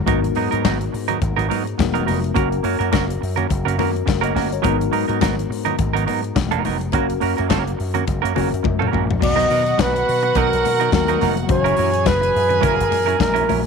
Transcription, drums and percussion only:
0.07 kick loud
0.07 closed hi-hat medium
0.07 muted conga medium
0.24 closed hi-hat soft
0.35 open hi-hat medium
0.35 muted conga soft
0.52 closed hi-hat soft
0.65 kick loud
0.65 snare loud
0.65 closed hi-hat medium
0.65 high conga medium
0.81 closed hi-hat soft
0.94 open hi-hat medium
1.08 closed hi-hat soft
1.08 low conga medium
1.22 kick loud
1.22 closed hi-hat medium
1.22 muted conga medium
1.39 closed hi-hat medium
1.51 open hi-hat medium
1.51 muted conga medium
1.67 closed hi-hat soft
1.79 kick loud
1.79 snare loud
1.79 closed hi-hat medium
1.79 high conga loud
1.95 closed hi-hat medium
2.08 open hi-hat medium
2.08 high conga medium
2.24 closed hi-hat medium
2.35 kick loud
2.35 closed hi-hat medium
2.35 muted conga soft
2.52 closed hi-hat soft
2.64 open hi-hat medium
2.64 muted conga soft
2.81 closed hi-hat soft
2.93 kick loud
2.93 snare loud
2.93 closed hi-hat medium
2.93 high conga loud
3.10 closed hi-hat medium
3.23 open hi-hat medium
3.37 closed hi-hat medium
3.37 low conga medium
3.50 kick loud
3.50 closed hi-hat medium
3.50 muted conga medium
3.68 closed hi-hat medium
3.79 open hi-hat medium
3.79 muted conga medium
3.79 low conga medium
3.96 closed hi-hat soft
4.07 kick loud
4.07 snare loud
4.07 closed hi-hat medium
4.07 high conga medium
4.23 closed hi-hat medium
4.36 snare soft
4.36 open hi-hat medium
4.36 high conga medium
4.52 closed hi-hat soft
4.64 kick loud
4.64 closed hi-hat medium
4.64 muted conga medium
4.81 closed hi-hat soft
4.93 open hi-hat medium
5.09 closed hi-hat soft
5.21 kick loud
5.21 snare loud
5.21 closed hi-hat medium
5.21 high conga medium
5.39 closed hi-hat soft
5.52 open hi-hat medium
5.66 closed hi-hat medium
5.66 low conga medium
5.79 kick loud
5.79 closed hi-hat medium
5.79 muted conga medium
5.97 closed hi-hat medium
6.08 open hi-hat medium
6.08 muted conga medium
6.24 closed hi-hat soft
6.36 kick loud
6.36 snare loud
6.36 closed hi-hat medium
6.36 high conga loud
6.51 closed hi-hat medium
6.65 open hi-hat medium
6.65 high conga medium
6.81 closed hi-hat medium
6.92 kick loud
6.92 closed hi-hat medium
6.92 muted conga medium
7.10 closed hi-hat soft
7.21 open hi-hat medium
7.38 closed hi-hat soft
7.50 kick loud
7.50 snare loud
7.50 closed hi-hat medium
7.50 high conga medium
7.67 closed hi-hat medium
7.80 open hi-hat medium
7.94 closed hi-hat medium
7.94 low conga medium
8.07 kick loud
8.07 closed hi-hat medium
8.07 muted conga medium
8.25 closed hi-hat medium
8.36 open hi-hat medium
8.36 muted conga medium
8.36 low conga medium
8.54 closed hi-hat soft
8.64 kick loud
8.64 high tom medium
8.64 high conga medium
8.82 mid tom medium
8.93 mid tom medium
8.93 high conga medium
9.10 floor tom loud
9.10 high conga medium
9.22 kick loud
9.22 crash loud
9.22 muted conga medium
9.39 closed hi-hat soft
9.50 open hi-hat medium
9.66 closed hi-hat soft
9.79 kick loud
9.79 snare loud
9.79 closed hi-hat medium
9.79 high conga medium
9.96 closed hi-hat medium
10.09 open hi-hat medium
10.23 closed hi-hat medium
10.35 kick loud
10.35 closed hi-hat medium
10.35 muted conga medium
10.53 closed hi-hat medium
10.65 open hi-hat medium
10.65 muted conga medium
10.81 closed hi-hat soft
10.92 kick loud
10.92 snare loud
10.92 closed hi-hat medium
10.92 high conga medium
11.08 closed hi-hat medium
11.21 snare soft
11.21 open hi-hat medium
11.21 high conga medium
11.37 closed hi-hat medium
11.49 kick loud
11.49 closed hi-hat medium
11.49 muted conga medium
11.66 closed hi-hat soft
11.77 open hi-hat medium
11.77 muted conga soft
11.94 closed hi-hat medium
12.06 kick loud
12.06 snare loud
12.06 closed hi-hat medium
12.06 high conga medium
12.23 closed hi-hat soft
12.36 open hi-hat medium
12.50 closed hi-hat medium
12.50 low conga medium
12.63 kick loud
12.63 closed hi-hat medium
12.63 muted conga medium
12.80 closed hi-hat medium
12.92 open hi-hat medium
12.92 muted conga medium
13.09 closed hi-hat soft
13.20 kick loud
13.20 snare loud
13.20 closed hi-hat medium
13.20 high conga loud
13.36 closed hi-hat medium
13.49 open hi-hat medium
13.49 high conga medium

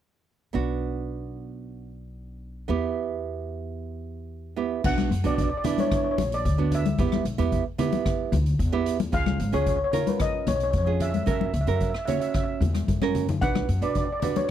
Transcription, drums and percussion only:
4.84 kick medium
4.84 crash medium
4.98 cross-stick medium
4.98 high conga medium
5.12 closed hi-hat medium
5.25 closed hi-hat medium
5.38 kick medium
5.38 closed hi-hat medium
5.65 closed hi-hat medium
5.65 low conga medium
5.78 closed hi-hat medium
5.78 high conga medium
5.92 kick medium
5.92 cross-stick medium
5.92 closed hi-hat medium
6.18 closed hi-hat medium
6.18 high conga medium
6.18 low conga medium
6.32 closed hi-hat medium
6.45 kick medium
6.45 closed hi-hat medium
6.72 closed hi-hat medium
6.72 low conga medium
6.85 closed hi-hat medium
6.85 high conga medium
6.98 kick medium
6.98 closed hi-hat medium
7.12 cross-stick medium
7.12 high conga medium
7.25 closed hi-hat medium
7.39 closed hi-hat medium
7.52 kick medium
7.52 closed hi-hat soft
7.79 closed hi-hat medium
7.79 low conga medium
7.92 closed hi-hat medium
7.92 high conga medium
8.06 kick medium
8.06 cross-stick medium
8.06 closed hi-hat medium
8.32 closed hi-hat medium
8.32 high conga medium
8.32 low conga medium
8.46 closed hi-hat medium
8.59 kick medium
8.59 closed hi-hat medium
8.86 closed hi-hat medium
9.00 closed hi-hat medium
9.00 high conga medium
9.13 kick medium
9.13 closed hi-hat medium
9.26 cross-stick medium
9.26 high conga medium
9.40 closed hi-hat medium
9.53 closed hi-hat medium
9.66 kick medium
9.66 closed hi-hat medium
9.93 closed hi-hat medium
9.93 low conga medium
10.07 closed hi-hat medium
10.07 high conga medium
10.20 kick medium
10.20 cross-stick medium
10.20 closed hi-hat medium
10.47 closed hi-hat medium
10.47 high conga medium
10.47 low conga medium
10.60 closed hi-hat medium
10.73 kick medium
10.73 closed hi-hat medium
11.00 closed hi-hat medium
11.00 low conga medium
11.14 closed hi-hat medium
11.14 high conga medium
11.27 kick medium
11.27 closed hi-hat medium
11.41 high conga medium
11.54 closed hi-hat medium
11.67 closed hi-hat medium
11.80 kick medium
11.80 closed hi-hat medium
11.94 cross-stick medium
12.07 closed hi-hat medium
12.07 low conga medium
12.21 closed hi-hat medium
12.34 kick loud
12.34 cross-stick medium
12.34 closed hi-hat medium
12.61 closed hi-hat medium
12.61 high conga medium
12.61 low conga medium
12.75 cross-stick medium
12.75 closed hi-hat medium
12.75 high conga soft
12.88 kick medium
12.88 closed hi-hat medium
12.88 high conga soft
13.02 cross-stick medium
13.02 high conga medium
13.15 closed hi-hat medium
13.15 low conga medium
13.28 closed hi-hat medium
13.28 low conga medium
13.42 kick loud
13.42 closed hi-hat medium
13.55 cross-stick medium
13.55 high conga medium
13.69 closed hi-hat medium
13.82 closed hi-hat medium
13.95 kick medium
13.95 closed hi-hat medium
14.22 closed hi-hat medium
14.22 low conga medium
14.36 closed hi-hat medium
14.36 high conga medium

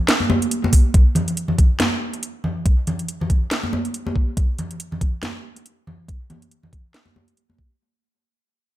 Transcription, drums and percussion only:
0.08 snare loud
0.08 closed hi-hat medium
0.20 high conga medium
0.30 high conga loud
0.42 closed hi-hat medium
0.51 closed hi-hat medium
0.64 high conga medium
0.73 kick medium
0.73 open hi-hat loud
0.94 kick loud
0.94 closed hi-hat medium
1.15 closed hi-hat medium
1.15 low conga medium
1.28 closed hi-hat medium
1.37 closed hi-hat medium
1.48 low conga medium
1.58 kick medium
1.58 closed hi-hat medium
1.80 snare loud
1.80 closed hi-hat medium
1.80 high conga medium
2.14 closed hi-hat soft
2.23 closed hi-hat medium
2.44 low conga medium
2.66 kick loud
2.66 closed hi-hat medium
2.87 closed hi-hat soft
2.87 low conga medium
2.99 closed hi-hat medium
3.08 closed hi-hat medium
3.21 low conga medium
3.30 kick medium
3.30 closed hi-hat medium
3.51 snare loud
3.51 closed hi-hat medium
3.63 high conga medium
3.73 high conga medium
3.85 closed hi-hat soft
3.94 closed hi-hat medium
4.07 high conga medium
4.16 kick medium
4.37 kick loud
4.37 closed hi-hat medium
4.58 closed hi-hat medium
4.58 low conga medium
4.71 closed hi-hat medium
4.80 closed hi-hat medium
4.92 low conga medium
5.01 kick medium
5.01 closed hi-hat soft
5.23 snare loud
5.23 closed hi-hat medium
5.23 high conga medium
5.56 closed hi-hat soft
5.66 closed hi-hat medium
5.87 low conga medium
6.08 kick loud
6.08 closed hi-hat medium
6.30 closed hi-hat soft
6.30 high conga medium
6.30 low conga medium
6.42 closed hi-hat soft
6.51 closed hi-hat medium
6.63 low conga medium
6.73 kick medium
6.73 closed hi-hat soft
6.94 snare loud
6.94 closed hi-hat medium
7.06 high conga medium
7.16 high conga medium
7.28 closed hi-hat soft
7.37 closed hi-hat medium
7.50 high conga medium
7.59 kick medium

